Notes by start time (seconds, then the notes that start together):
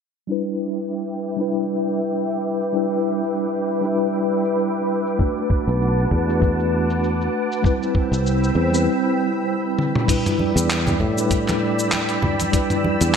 0.27 G3 D4 E4 B4 E5 G5 D6, shaker
0.32 B4
0.47 shaker
0.78 shaker
0.92 shaker
1.09 shaker
1.37 G3 D4 E4, shaker
1.41 B4
1.53 shaker
1.70 shaker
2.01 shaker
2.15 shaker
2.32 shaker
2.63 shaker
2.72 G3 D4 E4
2.77 B4, shaker
2.93 shaker
3.23 shaker
3.37 shaker
3.54 shaker
3.81 G3 D4 E4, shaker
3.86 B4
3.98 shaker
4.14 shaker
4.44 shaker
4.59 shaker
4.76 shaker
5.07 shaker
5.18 A3 D4 F#4 F#5 A5, kick, shaker
5.22 B4
5.37 shaker
5.50 kick
5.67 B1, shaker
5.82 shaker
5.99 shaker
6.11 E2, kick
6.27 A3 D4 F#4 B4, shaker
6.42 kick, shaker
6.60 shaker
6.90 shaker
7.04 shaker
7.21 shaker
7.52 shaker
7.62 G3 C4 E4 G5 B5 E6, kick, shaker
7.67 B4
7.83 shaker
7.95 kick
8.12 C2, shaker
8.27 shaker
8.44 shaker
8.55 E2
8.71 G3 C4 E4, shaker
8.75 B4
9.79 high tom
9.95 mid tom
10.07 G3 D4 E4 D5 G5 B5 E6, kick, closed hi-hat, crash, shaker
10.11 B4
10.26 closed hi-hat, mid tom, shaker
10.39 high conga
10.56 E2, closed hi-hat, shaker
10.70 clap, closed hi-hat, shaker
10.87 closed hi-hat, mid tom, low conga, shaker
11.00 A2, kick, high conga
11.16 G3 D4 E4, shaker
11.20 B4
11.31 kick, closed hi-hat, shaker
11.48 clap, high conga, shaker
11.79 shaker
11.92 clap, closed hi-hat, high conga, shaker
12.09 closed hi-hat, shaker
12.22 mid tom, low conga
12.40 closed hi-hat, high conga, shaker
12.52 G3 D4 E4, kick, closed hi-hat, shaker
12.56 B4
12.70 closed hi-hat, mid tom, shaker
12.84 high conga
13.01 E2, closed hi-hat, shaker